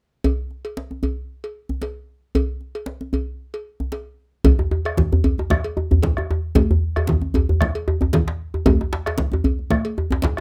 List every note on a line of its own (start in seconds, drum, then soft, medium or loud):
0.24 cowbell medium
0.24 djembe tone medium
0.24 djembe bass medium
0.51 djembe slap soft
0.65 cowbell soft
0.77 djembe slap medium
0.91 djembe tone soft
1.03 cowbell soft
1.03 djembe bass medium
1.44 cowbell soft
1.69 djembe slap soft
1.69 djembe tone soft
1.69 djembe bass soft
1.82 cowbell soft
1.82 djembe slap medium
2.35 cowbell medium
2.35 djembe tone medium
2.35 djembe bass medium
2.61 djembe slap soft
2.75 cowbell soft
2.86 djembe slap medium
3.01 djembe tone soft
3.13 cowbell soft
3.13 djembe bass medium
3.54 cowbell soft
3.80 djembe slap soft
3.80 djembe tone soft
3.80 djembe bass soft
3.92 cowbell soft
3.92 djembe slap soft
4.44 bombo rim soft
4.44 bombo low medium
4.44 cowbell medium
4.44 djembe tone medium
4.44 high conga medium
4.44 djembe bass medium
4.44 low conga medium
4.59 djembe tone medium
4.59 high conga soft
4.71 djembe tone medium
4.85 bombo rim medium
4.85 cowbell soft
4.97 bombo low medium
4.97 djembe slap medium
4.97 high conga soft
4.97 djembe tone medium
4.97 low conga medium
5.12 high conga soft
5.12 djembe tone medium
5.12 djembe bass medium
5.24 cowbell soft
5.24 djembe bass medium
5.38 high conga soft
5.38 djembe tone medium
5.50 bombo rim medium
5.50 bombo low medium
5.50 high conga medium
5.50 djembe tone medium
5.50 low conga medium
5.64 cowbell soft
5.77 djembe tone medium
5.77 high conga soft
5.91 djembe tone medium
5.91 high conga soft
5.91 djembe bass medium
6.03 bombo low loud
6.03 cowbell soft
6.03 djembe slap medium
6.03 low conga medium
6.17 bombo rim medium
6.17 djembe tone medium
6.31 djembe tone medium
6.55 bombo rim soft
6.55 bombo low medium
6.55 cowbell medium
6.55 djembe tone medium
6.55 high conga medium
6.55 djembe tone medium
6.55 djembe bass medium
6.55 low conga medium
6.70 high conga soft
6.70 djembe bass medium
6.96 bombo rim medium
6.96 cowbell soft
6.96 djembe tone medium
7.07 bombo low medium
7.07 djembe slap medium
7.07 high conga soft
7.07 djembe tone medium
7.07 low conga medium
7.22 djembe tone medium
7.22 high conga soft
7.34 cowbell soft
7.34 djembe tone medium
7.34 djembe bass medium
7.49 high conga soft
7.49 djembe bass medium
7.61 bombo rim medium
7.61 bombo low medium
7.61 high conga medium
7.61 low conga medium
7.75 cowbell soft
7.88 djembe tone medium
7.88 high conga soft
8.01 djembe tone medium
8.01 high conga soft
8.01 djembe bass medium
8.13 bombo low medium
8.13 cowbell soft
8.13 djembe slap medium
8.13 low conga medium
8.28 djembe slap medium
8.54 djembe tone medium
8.66 bombo rim soft
8.66 bombo low medium
8.66 cowbell medium
8.66 djembe tone medium
8.66 high conga medium
8.66 djembe tone loud
8.66 djembe bass medium
8.66 low conga medium
8.80 high conga soft
8.80 djembe tone medium
8.93 djembe slap medium
9.06 bombo rim medium
9.06 cowbell soft
9.06 djembe slap medium
9.18 bombo low medium
9.18 djembe slap medium
9.18 high conga soft
9.18 low conga medium
9.32 djembe tone medium
9.32 high conga soft
9.33 djembe tone medium
9.44 cowbell soft
9.44 djembe bass medium
9.59 high conga soft
9.70 bombo rim medium
9.70 bombo low medium
9.70 high conga medium
9.70 low conga medium
9.85 cowbell soft
9.97 high conga soft
9.97 djembe tone medium
10.11 djembe slap medium
10.11 djembe tone medium
10.11 high conga soft
10.11 djembe bass medium
10.22 bombo low medium
10.22 cowbell soft
10.22 djembe slap medium
10.22 low conga medium
10.24 djembe slap medium
10.37 bombo rim medium